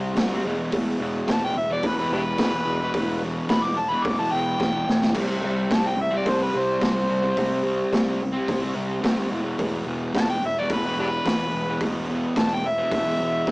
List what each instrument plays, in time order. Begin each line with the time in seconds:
Already playing: picked electric bass C2, distorted electric guitar C3 G3 C4
0.15 picked electric bass D2, distorted electric guitar C3 G3 C4, kick, snare, open hi-hat
0.30 distorted electric guitar G3 C4
0.45 picked electric bass E1, distorted electric guitar E2 B2 E3
0.59 distorted electric guitar B2 E3
0.72 picked electric bass E1, distorted electric guitar E2 B2 E3, kick, open hi-hat
0.99 picked electric bass E1, distorted electric guitar E2 B2 E3
1.28 picked electric bass E1, distorted electric guitar E2 B2 E3, harmonica A5, kick, snare, open hi-hat
1.42 distorted electric guitar B2 E3, harmonica G5
1.55 picked electric bass E1, harmonica E5, muted distorted electric guitar stroke
1.70 distorted electric guitar B2 E3, harmonica D5
1.83 picked electric bass E1, harmonica B4, kick, open hi-hat
1.98 distorted electric guitar B2 E3, harmonica B4
2.10 picked electric bass E1, distorted electric guitar E2, harmonica D4 G4 B4
2.14 distorted electric guitar B2 E3
2.38 picked electric bass E1, distorted electric guitar E2, kick, snare, open hi-hat
2.42 distorted electric guitar B2 E3
2.54 distorted electric guitar B2 E3
2.66 picked electric bass E1
2.81 distorted electric guitar B2 E3
2.94 picked electric bass E1, distorted electric guitar E2 B2, kick, open hi-hat
2.98 distorted electric guitar E3
3.23 distorted electric guitar E2 B2 E3
3.49 picked electric bass E1, distorted electric guitar E2 B2 E3, harmonica B5, kick, snare, open hi-hat
3.63 distorted electric guitar B2 E3, harmonica D6
3.77 harmonica A5, muted distorted electric guitar stroke
3.90 distorted electric guitar B2 E3, harmonica B5
4.03 picked electric bass E1, harmonica D6, kick, open hi-hat
4.19 distorted electric guitar B2 E3, harmonica A5
4.30 picked electric bass E1, distorted electric guitar E2 B2 E3, harmonica G5
4.58 picked electric bass E1, distorted electric guitar E2 B2 E3, kick, snare
4.73 distorted electric guitar B2 E3
4.87 picked electric bass E1, snare
5.01 distorted electric guitar B2 E3, snare
5.13 picked electric bass C2, distorted electric guitar C3 G3 C4, kick, open hi-hat, crash
5.42 picked electric bass C2, distorted electric guitar C3 G3 C4
5.70 distorted electric guitar C3 G3 C4, harmonica A5, kick, snare, open hi-hat
5.83 distorted electric guitar G3 C4
5.88 harmonica G5
5.96 picked electric bass C2, muted distorted electric guitar stroke
6.02 harmonica E5
6.11 distorted electric guitar G3 C4
6.17 harmonica D5
6.26 picked electric bass C2, harmonica C5, kick, open hi-hat
6.39 distorted electric guitar G3 C4, harmonica B4
6.52 picked electric bass C2, distorted electric guitar C3 G3 C4
6.58 harmonica C5
6.80 picked electric bass C2, distorted electric guitar C3 G3 C4, kick, snare, open hi-hat
6.94 distorted electric guitar G3 C4
7.09 picked electric bass C2
7.22 distorted electric guitar G3 C4
7.37 picked electric bass C2, distorted electric guitar C3 G3 C4, kick, open hi-hat
7.63 distorted electric guitar C3 G3 C4
7.92 picked electric bass C2, distorted electric guitar C3 G3 C4, kick, snare, open hi-hat
8.06 distorted electric guitar G3 C4
8.21 muted distorted electric guitar stroke
8.33 distorted electric guitar C4
8.37 distorted electric guitar G3
8.48 picked electric bass C2, kick, open hi-hat
8.62 distorted electric guitar G3 C4
8.74 picked electric bass C2, distorted electric guitar C3 G3 C4
9.01 picked electric bass D2, distorted electric guitar C3 G3 C4, kick, open hi-hat
9.06 snare
9.16 distorted electric guitar G3 C4
9.30 picked electric bass E1, distorted electric guitar E2 B2 E3
9.42 distorted electric guitar B2 E3
9.58 picked electric bass E1, distorted electric guitar E2 B2 E3, kick, open hi-hat
9.84 picked electric bass E1, distorted electric guitar E2 B2 E3
10.14 picked electric bass E1, distorted electric guitar E2 B2 E3, harmonica A5, kick, snare, open hi-hat
10.28 distorted electric guitar B2 E3, harmonica G5
10.43 picked electric bass E1, harmonica E5, muted distorted electric guitar stroke
10.58 distorted electric guitar B2 E3, harmonica D5
10.70 picked electric bass E1, harmonica B4, kick, open hi-hat
10.85 distorted electric guitar B2 E3, harmonica B4
10.97 picked electric bass E1, distorted electric guitar E2 B2, harmonica D4 G4 B4
11.02 distorted electric guitar E3
11.25 picked electric bass E1, distorted electric guitar E2 B2 E3, kick, snare, open hi-hat
11.37 distorted electric guitar B2 E3
11.53 picked electric bass E1
11.66 distorted electric guitar B2 E3
11.79 picked electric bass E1, distorted electric guitar E2 B2 E3, kick, open hi-hat
12.08 distorted electric guitar E2 B2 E3
12.36 picked electric bass E1, distorted electric guitar E2 B2 E3, harmonica A5, kick, snare, open hi-hat
12.50 distorted electric guitar B2 E3, harmonica G5
12.65 harmonica E5, muted distorted electric guitar stroke
12.78 distorted electric guitar B2 E3
12.91 picked electric bass E1, kick, open hi-hat
13.04 distorted electric guitar B2 E3
13.18 picked electric bass E1, distorted electric guitar E2 B2 E3
13.47 picked electric bass E1, distorted electric guitar E2 B2, kick, snare